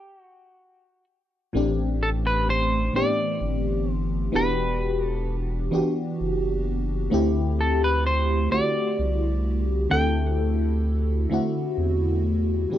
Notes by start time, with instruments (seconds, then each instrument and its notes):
Already playing: clean electric guitar G4
0.20 clean electric guitar F#4
1.53 analog synth bass A1, fm electric piano A2 E3 A3 C4 D4 G4
2.03 clean electric guitar A4
2.27 clean electric guitar B4
2.50 clean electric guitar C5
2.93 analog synth bass G1, fm electric piano A2 E3 B3 C4 D4 G4, clean electric guitar D5
3.41 analog synth bass G1
3.92 clean electric guitar C5
4.32 analog synth bass E1, fm electric piano E3 B3 D4 F#4 G4
4.36 clean electric guitar B4
5.05 clean electric guitar A4
5.71 analog synth bass F#1, fm electric piano E3 B3 D4 F#4 G4
6.21 analog synth bass F#1
7.10 analog synth bass D2, fm electric piano D3 A3 C4 E4 G4
7.61 clean electric guitar A4
7.84 clean electric guitar B4
8.07 clean electric guitar C5
8.50 analog synth bass C2, fm electric piano D3 A3 C4 E4 F#4, clean electric guitar D5
8.99 analog synth bass C2
9.90 analog synth bass D2, fm electric piano D3 A3 C4 E4 A4, clean electric guitar G5
11.30 analog synth bass E2, fm electric piano D3 A3 C4 E4
11.34 fm electric piano F#4
11.78 analog synth bass E2
12.70 fm electric piano A2 E3 B3 C4 D4 G4